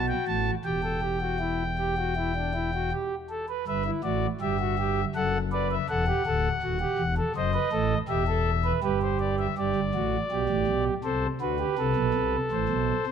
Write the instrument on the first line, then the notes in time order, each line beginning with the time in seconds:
pipe organ
Already playing: B1 B2 F#4
0.08 G5
0.27 A1 A2 A5
0.65 E1 E2 G4 G5
0.83 A4
1.02 G4
1.21 F#4
1.40 E4
1.78 G4
1.97 F#4
2.16 E4
2.36 D4
2.54 E4
2.74 F#4
2.92 G4
3.29 A4
3.49 B4
3.67 G1 G2 B4 E5
3.85 E4
4.03 A1 A2 F#4 D5
4.41 G1 G2 G4 E5
4.59 F#4
4.79 G4
5.15 F#1 F#2 A4 F#5
5.52 B4 D5
5.71 E5
5.89 E1 E2 A4 F#5
6.07 G4
6.26 D1 D2 A4
6.62 D#1 D#2 F#4
6.80 G4
6.98 E1 E2
7.17 A4
7.35 F#1 F#2 C5 D#5
7.54 B4
7.72 A1 A2 A4
8.08 E1 E2 G4 E5
8.28 A4
8.64 B4
8.83 G1 G2 G4 B4
9.02 C5
9.20 D5
9.39 E5
9.58 G1 G2 G4 D5
9.76 G1 G2
9.94 A1 A2 F#4
10.31 B1 B2 G4
10.49 A1 A2
10.67 B1 B2
11.04 C2 C3 A4 C5
11.40 D2 D3 F#4 B4
11.59 G4
11.78 C2 C3 A4
11.96 B1 B2
12.14 C2 C3
12.51 A1 A2 C5
12.69 B1 B2
13.06 C2 C3